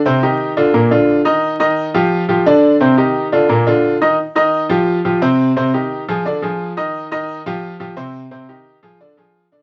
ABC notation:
X:1
M:4/4
L:1/8
Q:1/4=174
K:Eb
V:1 name="Grand piano"
[C,Cc] [E,EG]2 [D,DF] [B,,B,B] [D,DF]2 [E,Ee]- | [E,Ee] [E,Ee]2 [F,FG]2 [F,FG] [D,Dd]2 | [C,Cc] [E,EG]2 [D,DF] [B,,B,B] [D,DF]2 [E,Ee] | z [E,Ee]2 [F,FG]2 [F,FG] [C,Cc]2 |
[C,Cc] [E,EG]2 [F,FA] [D,Dd] [F,FA]2 [E,Ee]- | [E,Ee] [E,Ee]2 [F,FG]2 [F,FG] [C,Cc]2 | [C,Cc] [E,EG]2 [F,FA] [D,Dd] [F,FA]2 [D,Dd] |]